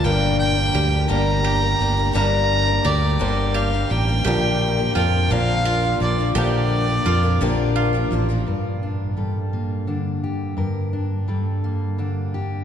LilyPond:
<<
  \new Staff \with { instrumentName = "Fiddle" } { \time 6/8 \key g \minor \tempo 4. = 57 g''8 g''4 bes''4. | bes''4 d''4 f''8 g''8~ | g''4 g''8 f''4 d''8 | d''2 r4 |
r2. | r2. | }
  \new Staff \with { instrumentName = "Mandolin" } { \time 6/8 \key g \minor r4 g'4 g'4 | r4 g'4 g'4 | g'4 f'4 f'4 | g'4 f'4 f'4 |
r2. | r2. | }
  \new Staff \with { instrumentName = "Steel-string acoustic guitar" } { \time 6/8 \key g \minor << { r2. | r2. | r2. | r2. |
bes'8 d'8 a'8 bes8 d'8 g'8 | bes'8 d'8 a'8 bes8 d'8 g'8 | } \\ { r2. | r2. | r2. | r2. |
g,4 g4 d4 | g,4 g4 d4 | } >> }
  \new Staff \with { instrumentName = "Grand piano" } { \time 6/8 \key g \minor <g bes d' bes'>4 r8 <g bes d' bes'>4 r8 | <g bes d' bes'>4 r8 <g bes d' c''>4 r8 | <f bes d' bes'>4 r8 <f bes d' bes'>4 r8 | <f bes d' bes'>4 r8 <f bes d' g'>4 r8 |
r2. | r2. | }
  \new Staff \with { instrumentName = "Grand piano" } { \clef bass \time 6/8 \key g \minor <g,, g,>2. | <g,, g,>2. | <bes,, bes,>2. | d2. |
r2. | r2. | }
  \new Staff \with { instrumentName = "Steel-string acoustic guitar" } { \time 6/8 \key g \minor <g, d g bes d' bes'>8. <g bes d' bes'>16 <g bes d' bes'>16 <g bes d' bes'>16 <g, d g bes d' bes'>8. <g bes d' bes'>16 <g bes d' bes'>16 <g bes d' bes'>16 | <g, d g bes d' bes'>8. <g bes d' bes'>16 <g bes d' bes'>16 <g bes d' bes'>16 <g, d g bes d' bes'>8. <g bes d' bes'>16 <g bes d' bes'>16 <g bes d' bes'>16 | <bes, d f bes d' bes'>8. <f bes d' bes'>16 <f bes d' bes'>16 <f bes d' bes'>16 <bes, d f bes d' bes'>8. <f bes d' bes'>16 <f bes d' bes'>16 <f bes d' bes'>16 | <bes, d f bes d' bes'>8. <f bes d' bes'>16 <f bes d' bes'>16 <f bes d' bes'>16 <bes, d f bes d' bes'>8. <f bes d' bes'>16 <f bes d' bes'>16 <f bes d' bes'>16 |
r2. | r2. | }
  \new Staff \with { instrumentName = "Fingered electric bass" } { \clef bass \time 6/8 \key g \minor g,,4 d,8 g,,4 g,,8 | g,,4 d,8 g,,4 a,,8 | bes,,4 f,8 bes,,4 bes,,8 | bes,,4 f,8 bes,,4 a,,8 |
r2. | r2. | }
>>